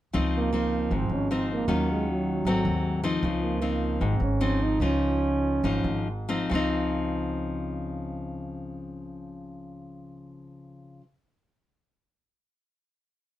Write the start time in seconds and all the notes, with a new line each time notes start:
0.13 C#2 C#3 F3 C4 D#4
0.38 A#3
0.53 F3 C4 D#4
0.91 G#1 G#2 C4
1.09 G#1
1.14 C#4
1.31 F3 C4 D#4
1.53 A#3
1.68 D#2 D#3 F#3 C#4 F4
1.92 G#3
2.11 F#3
2.45 G#1 G#2 F#3 A3 C4
2.65 D#2
3.04 F3 C4 D#4
3.23 C#2 C#3
3.44 A#3
3.62 F3 C4 D#4
4.01 G#1 G#2 C4
4.20 G#1 C#4
4.41 F3 C4 D#4
4.63 D#4
4.80 C#2 C#3 F3 C#4 D#4
5.63 G#1 G#2 F3 D#4
5.84 G#1
6.29 F3 C4 D#4
6.50 C#2 C#3 F3
6.54 C4 D#4